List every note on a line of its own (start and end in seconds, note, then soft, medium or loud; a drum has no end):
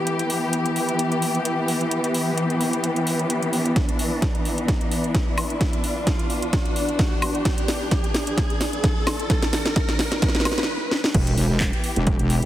0.00 10.64 E3 medium
0.00 10.64 B3 medium
0.00 3.74 G4 medium
0.00 riser medium
0.07 closed hi-hat medium
0.19 closed hi-hat soft
0.30 open hi-hat loud
0.53 closed hi-hat medium
0.66 closed hi-hat soft
0.76 open hi-hat medium
0.89 closed hi-hat soft
0.99 closed hi-hat medium
1.12 closed hi-hat soft
1.22 open hi-hat loud
1.35 closed hi-hat soft
1.45 closed hi-hat medium
1.68 open hi-hat loud
1.81 closed hi-hat soft
1.91 closed hi-hat medium
2.04 closed hi-hat soft
2.14 open hi-hat loud
2.38 closed hi-hat medium
2.50 closed hi-hat soft
2.61 open hi-hat medium
2.73 closed hi-hat soft
2.84 closed hi-hat medium
2.96 closed hi-hat soft
3.07 open hi-hat loud
3.19 closed hi-hat soft
3.30 closed hi-hat medium
3.43 closed hi-hat soft
3.53 open hi-hat medium
3.66 closed hi-hat soft
3.76 10.67 D4 medium
3.76 kick loud
3.76 snare soft
3.76 closed hi-hat medium
3.89 closed hi-hat soft
3.99 open hi-hat loud
4.22 kick loud
4.22 snare soft
4.22 closed hi-hat medium
4.35 closed hi-hat soft
4.45 open hi-hat medium
4.58 closed hi-hat soft
4.68 kick loud
4.68 snare soft
4.68 closed hi-hat medium
4.81 closed hi-hat soft
4.91 open hi-hat loud
5.04 closed hi-hat soft
5.15 kick loud
5.15 snare medium
5.15 closed hi-hat medium
5.38 open hi-hat loud
5.38 high woodblock medium
5.50 closed hi-hat soft
5.61 kick loud
5.61 snare medium
5.61 closed hi-hat medium
5.73 closed hi-hat medium
5.84 open hi-hat loud
6.07 kick loud
6.07 snare medium
6.07 closed hi-hat medium
6.19 closed hi-hat soft
6.30 open hi-hat medium
6.42 closed hi-hat medium
6.53 kick loud
6.53 snare medium
6.53 closed hi-hat medium
6.65 closed hi-hat soft
6.76 open hi-hat loud
6.89 closed hi-hat soft
6.99 kick loud
6.99 snare medium
6.99 closed hi-hat medium
7.22 open hi-hat medium
7.22 high woodblock medium
7.35 closed hi-hat soft
7.45 kick loud
7.45 snare medium
7.45 closed hi-hat medium
7.58 closed hi-hat medium
7.68 snare medium
7.68 open hi-hat loud
7.91 kick loud
7.91 snare medium
7.91 closed hi-hat medium
8.04 closed hi-hat soft
8.14 snare medium
8.14 open hi-hat medium
8.27 closed hi-hat medium
8.38 kick loud
8.38 snare medium
8.38 closed hi-hat medium
8.50 closed hi-hat soft
8.61 snare medium
8.61 open hi-hat loud
8.73 closed hi-hat soft
8.84 kick loud
8.84 snare medium
8.84 closed hi-hat medium
9.07 snare medium
9.07 open hi-hat medium
9.07 high woodblock medium
9.19 closed hi-hat soft
9.30 kick loud
9.30 snare medium
9.30 closed hi-hat medium
9.42 snare medium
9.42 closed hi-hat medium
9.53 snare medium
9.53 open hi-hat loud
9.66 snare medium
9.66 closed hi-hat soft
9.76 kick loud
9.76 snare medium
9.76 closed hi-hat medium
9.89 snare medium
9.89 closed hi-hat soft
9.99 snare loud
9.99 open hi-hat medium
10.12 snare medium
10.12 closed hi-hat medium
10.22 kick loud
10.22 snare loud
10.22 closed hi-hat medium
10.28 snare medium
10.35 snare medium
10.35 closed hi-hat soft
10.40 snare loud
10.45 snare loud
10.45 open hi-hat loud
10.45 high woodblock medium
10.52 snare medium
10.58 snare medium
10.58 closed hi-hat soft
10.63 snare medium
10.91 snare medium
11.04 snare medium
11.14 11.36 E1 loud
11.14 12.46 E3 medium
11.14 12.46 B3 medium
11.14 12.46 G4 loud
11.14 kick loud
11.14 closed hi-hat medium
11.14 crash loud
11.27 closed hi-hat medium
11.38 11.71 E1 loud
11.38 open hi-hat loud
11.60 kick loud
11.60 clap loud
11.60 closed hi-hat medium
11.73 closed hi-hat soft
11.84 open hi-hat medium
11.96 12.17 E1 loud
11.96 closed hi-hat medium
12.07 kick loud
12.07 closed hi-hat medium
12.19 12.40 E1 loud
12.19 closed hi-hat soft
12.30 open hi-hat loud
12.42 closed hi-hat soft